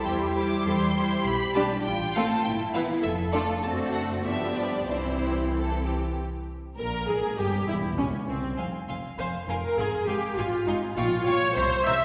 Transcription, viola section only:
0.06 G3 E4
0.35 G3 E4
0.65 G3 E4
0.95 G3 E4
1.56 G3 D4
2.16 A3 C4
2.75 E3 B3
3.34 A3 D4
3.64 A3 C4
4.26 F3 B3
4.89 E3 C4
6.77 A#4
7.08 G#4
7.22 G#4
7.37 G4
7.67 E4
7.97 C#4
8.28 C4
9.18 C5
9.49 A#4
9.64 A#4
9.78 G#4
10.07 G4
10.37 F4
10.66 D#4
10.95 F4
11.25 C#5
11.55 C5
11.86 E5

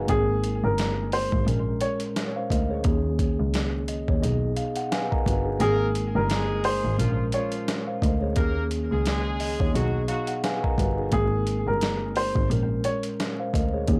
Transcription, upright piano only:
0.09 G#4
0.64 A#4
1.13 C5
1.81 C#5
5.61 G#4
6.16 A#4
6.65 C5
7.34 C#5
11.13 G#4
11.68 A#4
12.17 C5
12.85 C#5

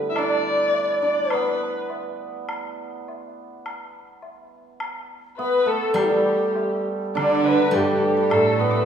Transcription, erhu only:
0.10 E5
0.17 D5
1.02 D5
1.32 B4
5.37 B4
5.68 A4
5.97 G4
6.10 G4
7.16 D5
7.45 B4
7.75 G4
8.19 G4
8.33 A4
8.60 B4
8.71 B5 D6
8.80 A5

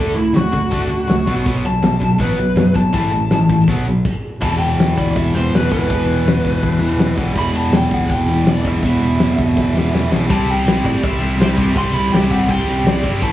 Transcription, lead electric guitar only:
Already playing: A4
0.14 E4
0.35 F#4
1.66 A5
2.21 B4
2.76 A5
2.93 A5
4.43 A5
4.59 G5
4.97 D5
5.17 E5
5.35 C5
5.56 B4
5.72 B4
7.39 B5
7.56 A5
7.75 G5
7.94 F#5
8.11 G5
8.49 D5
8.67 E5
10.32 A5
10.51 G5
10.86 D5
11.04 E5
11.41 C5
11.78 C6
11.94 B5
12.12 G5
12.32 F#5
12.49 G5
12.88 D5
13.23 A5

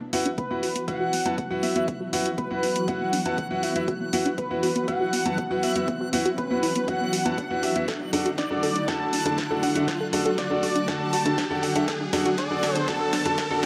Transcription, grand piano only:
0.13 E4 F#4 B4 F#5
0.51 E4 F#4 B4 F#5
0.88 E4 F#4 B4 F#5
1.26 E4 F#4 B4 A5
1.51 E4 F#4 B4 F#5
1.76 E4 F#4 B4 E5
2.13 E4 F#4 B4 F#5
2.51 E4 F#4 B4 F#5
2.88 E4 F#4 B4 F#5
3.26 E4 F#4 B4 A5
3.51 E4 F#4 B4 F#5
3.76 E4 F#4 B4 E5
4.13 E4 F#4 B4 F#5
4.51 E4 F#4 B4 F#5
4.88 E4 F#4 B4 F#5
5.26 E4 F#4 B4 A5
5.51 E4 F#4 B4 F#5
5.76 E4 F#4 B4 E5
6.13 E4 F#4 B4 F#5
6.51 E4 F#4 B4 F#5
6.88 E4 F#4 B4 F#5
7.26 E4 F#4 B4 A5
7.51 E4 F#4 B4 F#5
7.76 E4 F#4 B4 E5
8.13 D4 F#4 A4 F#5
8.51 D4 F#4 A4 F#5
8.88 D4 F#4 A4 F#5
9.26 D4 F#4 A4 A5
9.51 D4 F#4 A4 F#5
9.76 D4 F#4 A4 E5
10.13 D4 F#4 A4 F#5
10.51 D4 F#4 A4 F#5
10.88 D4 F#4 A4 F#5
11.26 D4 F#4 A4 A5
11.51 D4 F#4 A4 F#5
11.76 D4 F#4 A4 E5
12.13 D4 F#4 A4 F#5
12.51 D4 F#4 A4 F#5
12.88 D4 F#4 A4 F#5
13.26 D4 F#4 A4 A5
13.51 D4 F#4 A4 F#5

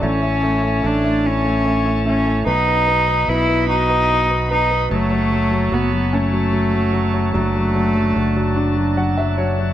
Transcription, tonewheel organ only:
Already playing: A5
0.03 E4 C#5
2.48 F#4 D#5 B5
4.91 C#5 A5
7.35 D4 F#4

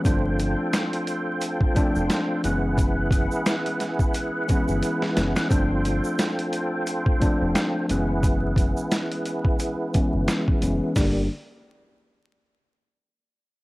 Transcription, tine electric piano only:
0.04 F3 A3 C4 D4
1.74 F3 A3 C4 D4
2.43 E3 G#3 B3 C#4
4.48 E3 G#3 B3 C#4
5.15 E3 G#3 B3 C#4
5.49 F3 A3 C4 D4
7.20 F3 A3 C4 D4
7.88 E3 G#3 B3 C#4
9.93 E3 G#3 B3 C#4
10.60 E3 G#3 B3 C#4
10.96 D3 G3 A#3 D4

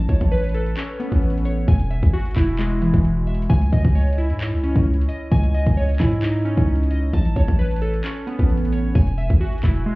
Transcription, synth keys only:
Already playing: A5
0.09 C#5
0.32 B4
0.54 A4
0.77 C#4
1.00 B3
1.45 C#5
1.68 G#5
1.91 E5
2.13 F#4
2.36 E4
2.59 G#3
2.82 E3
3.27 E5
3.50 G#5
3.72 D#5
3.95 C#5
4.18 E4
4.63 C#4
5.09 D#5
5.32 G#5
5.54 D#5
5.77 C#5
6.00 E4
6.23 D#4
6.45 C#4
6.91 D#5
7.13 A5
7.36 C#5
7.59 B4
7.82 A4
8.04 C#4
8.27 B3
8.72 C#5
8.95 G#5
9.18 E5
9.41 F#4
9.63 E4
9.86 G#3

